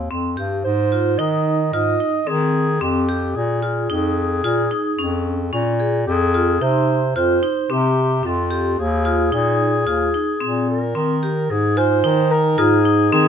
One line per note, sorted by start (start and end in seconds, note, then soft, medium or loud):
0.11 0.35 F2 medium
0.11 0.29 C4 medium
0.37 0.62 G2 medium
0.37 0.56 G4 medium
0.64 1.15 G#2 medium
0.64 1.20 C5 medium
0.92 1.10 F4 medium
1.18 1.69 D#3 medium
1.18 1.56 D#4 medium
1.18 1.73 D#5 medium
1.73 1.98 G#2 medium
1.73 1.92 F4 medium
1.73 2.29 D#5 medium
2.00 2.19 D#4 medium
2.27 2.78 D#3 medium
2.27 2.64 C4 medium
2.27 2.83 G#4 medium
2.81 3.32 F2 medium
2.81 3.00 C4 medium
2.81 3.37 G4 medium
3.09 3.27 G4 medium
3.35 3.86 A#2 medium
3.35 3.62 G#4 medium
3.62 3.81 F4 medium
3.62 5.76 G#4 medium
3.90 4.40 F2 medium
3.90 4.27 D#4 medium
4.44 4.69 A#2 medium
4.44 4.63 F4 medium
4.71 4.90 D#4 medium
4.99 5.49 F2 medium
4.99 5.36 C#4 medium
5.53 6.03 A#2 medium
5.53 5.71 C#4 medium
5.80 5.98 G#4 medium
6.07 6.57 F2 medium
6.07 6.63 G#4 medium
6.34 6.53 F4 medium
6.61 7.11 C3 medium
6.61 6.99 D#4 medium
6.61 7.15 C5 medium
7.16 7.41 F2 medium
7.16 7.34 F4 medium
7.16 7.72 C5 medium
7.43 7.61 D#4 medium
7.70 8.20 C3 medium
7.70 8.07 C4 medium
7.70 8.27 G4 medium
8.23 8.74 F2 medium
8.23 8.42 C4 medium
8.23 8.81 F4 medium
8.51 8.69 G4 medium
8.78 9.29 D#2 medium
8.78 10.69 G#4 medium
9.05 9.24 F4 medium
9.32 9.83 A#2 medium
9.32 9.70 D#4 medium
9.87 10.12 D#2 medium
9.87 10.05 F4 medium
10.14 10.33 D#4 medium
10.41 10.91 A#2 medium
10.41 10.78 C4 medium
10.70 11.52 A#4 medium
10.95 11.46 D#3 medium
10.95 11.14 C4 medium
11.23 11.41 G4 medium
11.50 12.00 G#2 medium
11.50 13.28 D#4 medium
11.50 11.79 G#4 medium
11.77 11.96 F4 medium
11.77 12.33 C5 loud
11.77 13.28 G#5 medium
12.04 12.54 D#3 medium
12.04 12.41 D#4 medium
12.31 12.60 A#4 medium
12.31 13.28 A#5 medium
12.58 13.09 G#2 medium
12.58 12.77 F4 medium
12.58 13.12 G#4 medium
12.85 13.04 D#4 medium
13.12 13.28 D#3 medium
13.12 13.28 C4 medium
13.12 13.28 G#4 medium